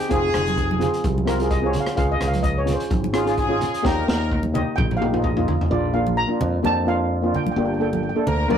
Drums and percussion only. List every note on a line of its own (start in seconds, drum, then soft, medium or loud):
0.00 closed hi-hat medium
0.10 kick loud
0.10 closed hi-hat medium
0.34 cross-stick medium
0.34 closed hi-hat medium
0.34 low conga medium
0.47 closed hi-hat medium
0.47 high conga medium
0.57 kick medium
0.57 closed hi-hat medium
0.71 high conga medium
0.81 closed hi-hat medium
0.81 low conga medium
0.94 closed hi-hat medium
1.04 kick loud
1.04 closed hi-hat medium
1.04 high conga medium
1.18 high conga medium
1.27 cross-stick medium
1.27 closed hi-hat medium
1.40 closed hi-hat medium
1.50 kick medium
1.50 closed hi-hat medium
1.73 closed hi-hat medium
1.73 low conga medium
1.86 cross-stick medium
1.86 closed hi-hat medium
1.97 kick loud
1.97 closed hi-hat medium
2.21 cross-stick medium
2.21 closed hi-hat medium
2.21 low conga medium
2.33 closed hi-hat medium
2.33 high conga medium
2.44 kick medium
2.44 closed hi-hat medium
2.67 closed hi-hat medium
2.67 low conga medium
2.80 closed hi-hat medium
2.90 kick loud
2.90 closed hi-hat medium
2.90 high conga medium
3.04 high conga medium
3.14 cross-stick medium
3.14 closed hi-hat medium
3.27 closed hi-hat medium
3.37 kick medium
3.37 closed hi-hat medium
3.61 closed hi-hat medium
3.61 low conga medium
3.74 closed hi-hat medium
3.85 kick loud
3.85 snare medium
4.08 snare medium
4.31 kick medium
4.31 high tom medium
4.43 high conga medium
4.55 high tom medium
4.55 low conga medium
4.78 kick loud
4.78 mid tom loud
4.78 high conga medium
4.78 low conga medium
4.91 mid tom medium
4.91 high conga medium
5.02 mid tom medium
5.14 mid tom medium
5.24 kick medium
5.24 mid tom medium
5.37 floor tom medium
5.48 floor tom loud
5.48 low conga medium
5.61 floor tom loud
6.07 high conga medium
6.41 low conga medium
6.65 high conga medium
7.34 low conga medium
7.46 high conga medium
7.93 high conga medium
8.27 low conga medium
8.50 high conga medium